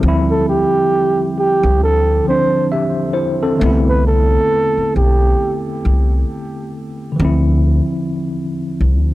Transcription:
0.00 0.62 D2 medium
0.00 2.19 D3 medium
0.00 2.21 F3 medium
0.00 0.26 G3 medium
0.04 2.23 C4 medium
0.04 2.25 E4 medium
0.31 0.46 A4 medium
0.49 1.34 G4 medium
1.39 1.79 G4 medium
1.63 1.82 C2 medium
1.82 2.19 D2 medium
1.82 2.23 A4 medium
2.24 3.55 D3 medium
2.24 3.60 F3 soft
2.24 2.72 C4 soft
2.24 2.68 C5 medium
2.30 2.73 D4 medium
2.72 3.14 G4 soft
2.72 3.14 E5 medium
3.13 3.40 E4 medium
3.13 3.40 C5 medium
3.43 3.85 C4 medium
3.43 3.85 A4 medium
3.56 7.11 D3 medium
3.56 7.14 A3 medium
3.61 4.36 C2 loud
3.61 7.16 B3 medium
3.66 7.17 E4 medium
3.89 4.05 B4 medium
4.07 4.98 A4 medium
4.77 muted upright bass stroke soft
4.96 5.33 B1 medium
4.96 5.63 G4 medium
5.85 6.22 C2 medium
7.12 9.14 D3 medium
7.16 7.79 D2 loud
7.16 7.25 E3 medium
7.20 9.14 F3 medium
7.20 9.14 C4 medium
7.25 9.14 E4 medium
8.81 8.99 C2 medium
8.99 9.14 D2 medium

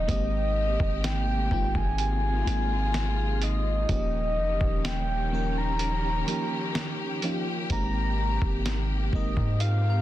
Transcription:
0.00 0.11 F3 medium
0.00 0.08 A#3 medium
0.00 0.11 C#4 medium
0.00 0.09 D#4 medium
0.00 0.10 G4 medium
0.00 0.52 G5 medium
0.07 0.77 G#1 loud
0.07 3.85 C3 medium
0.07 1.36 G#3 medium
0.07 1.36 A#3 medium
0.07 3.85 A#3 medium
0.07 1.36 C4 medium
0.07 1.36 D#4 medium
0.07 1.97 G4 medium
0.07 1.37 G4 loud
0.07 1.06 D#5 loud
0.07 kick loud
0.07 closed hi-hat medium
0.80 1.48 G#1 loud
0.80 kick loud
1.04 1.78 G5 loud
1.04 snare loud
1.04 closed hi-hat medium
1.51 1.74 G#1 loud
1.51 2.36 G#3 medium
1.51 2.36 A#3 medium
1.51 2.37 C4 medium
1.51 2.37 D#4 medium
1.51 2.37 F4 medium
1.51 kick loud
1.75 2.44 G#1 loud
1.75 3.45 G#5 loud
1.75 kick medium
1.98 3.87 F4 medium
1.98 3.41 G#5 medium
1.98 closed hi-hat medium
2.46 3.85 G#1 loud
2.46 3.74 G#3 medium
2.46 3.74 A#3 medium
2.46 3.74 C4 medium
2.46 3.75 D#4 medium
2.46 3.75 G#4 medium
2.46 closed hi-hat medium
2.94 snare loud
2.94 closed hi-hat medium
3.42 3.90 D#5 medium
3.42 closed hi-hat medium
3.89 4.38 D#1 loud
3.89 7.67 D#3 medium
3.89 5.17 F3 medium
3.89 5.17 A#3 medium
3.89 7.67 C#4 medium
3.89 5.17 C#4 medium
3.89 5.18 D#4 medium
3.89 10.02 G4 medium
3.89 5.18 G4 loud
3.89 4.88 D#5 loud
3.89 kick loud
3.89 closed hi-hat medium
4.37 4.60 F1 loud
4.61 6.24 D#1 loud
4.61 kick loud
4.85 5.59 G5 loud
4.85 snare loud
4.85 closed hi-hat medium
5.32 6.17 F3 medium
5.32 6.17 A#3 medium
5.32 6.18 C#4 medium
5.32 6.18 D#4 medium
5.32 6.18 A#4 medium
5.58 7.24 A#5 loud
5.79 closed hi-hat medium
6.27 7.12 F3 medium
6.27 7.13 A#3 medium
6.27 7.13 C#4 medium
6.27 7.13 D#4 medium
6.27 7.14 G4 medium
6.27 closed hi-hat medium
6.75 snare loud
6.75 closed hi-hat medium
7.22 7.65 F3 medium
7.22 7.65 A#3 medium
7.22 7.66 C#4 medium
7.22 7.66 D#4 medium
7.22 7.66 F4 medium
7.22 closed hi-hat medium
7.69 8.39 G#1 loud
7.69 10.02 C3 medium
7.69 8.98 G#3 medium
7.69 9.59 A#3 medium
7.69 8.98 A#3 medium
7.69 8.98 C4 medium
7.69 8.99 D#4 medium
7.69 8.99 G4 loud
7.69 8.62 A#5 loud
7.69 kick loud
7.69 closed hi-hat medium
8.42 9.10 G#1 loud
8.42 kick loud
8.66 snare loud
8.66 closed hi-hat medium
9.13 9.36 G#1 loud
9.13 9.98 G#3 medium
9.13 9.98 A#3 medium
9.13 9.99 C4 medium
9.13 9.99 D#4 medium
9.13 9.99 A#4 medium
9.13 9.63 D#5 medium
9.13 kick medium
9.37 10.02 G#2 loud
9.37 kick medium
9.60 10.02 C4 medium
9.60 10.02 F5 medium
9.60 10.02 F5 loud
9.60 closed hi-hat medium
9.90 10.02 A#5 medium

